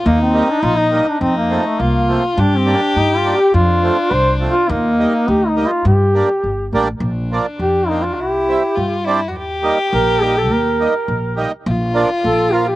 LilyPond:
<<
  \new Staff \with { instrumentName = "Duduk" } { \time 2/4 \key ees \lydian \tempo 4 = 103 bes16 c'8 d'16 f'16 ees'8 d'16 | c'16 bes8 a16 bes8. r16 | \tuplet 3/2 { d'8 c'8 d'8 ees'8 f'8 g'8 } | f'4 \tuplet 3/2 { c''8 r8 f'8 } |
bes4 \tuplet 3/2 { g'8 ees'8 f'8 } | g'4. r8 | r4 g'8 ees'16 f'16 | g'4. r8 |
r4 bes'8 g'16 a'16 | bes'4. r8 | r4 a'8 f'16 g'16 | }
  \new Staff \with { instrumentName = "Violin" } { \time 2/4 \key ees \lydian ees'2 | ees'4 f'4 | g'2 | d'2 |
ees'2 | r2 | d'2 | e'4 f'8 e'16. fis'32 |
g'2~ | g'4. r8 | f'2 | }
  \new Staff \with { instrumentName = "Accordion" } { \time 2/4 \key ees \lydian r8 <g bes ees'>16 r8. <g bes ees'>16 r16 | r8 <f a c'>16 r8. <f a c'>16 r16 | r8 <g bes d'>16 r8. <g bes d'>16 r16 | r8 <f a c'>16 r8. <f a c'>16 r16 |
r8 <g bes ees'>16 r8. <g bes ees'>16 r16 | r8 <g bes d'>16 r8. <g bes d'>16 r16 | r8 <f bes d'>16 r8. <f bes c'>16 r16 | r8 <g c' e'>16 r8. <g c' d'>16 r16 |
r8 <g bes ees'>16 r8. <g bes ees'>16 r16 | r8 <g bes ees'>16 r8. <g bes ees'>16 r16 | r8 <f bes d'>16 r8. <f bes f'>16 r16 | }
  \new Staff \with { instrumentName = "Upright bass" } { \clef bass \time 2/4 \key ees \lydian ees,4 bes,,4 | f,4 c,4 | g,4 g,4 | f,4 c,4 |
ees,4 d,4 | g,4 g,,8 a,,8 | bes,,4 f,4 | c,4 g,4 |
ees,4 bes,,4 | ees,4 bes,,4 | bes,,4 bes,,4 | }
>>